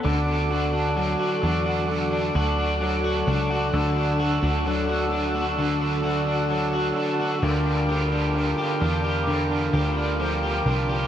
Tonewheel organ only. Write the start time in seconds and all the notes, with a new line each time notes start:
0.04 A4 D5 F#5 D6
3.73 E6
7.43 A#4 F5 G5 D6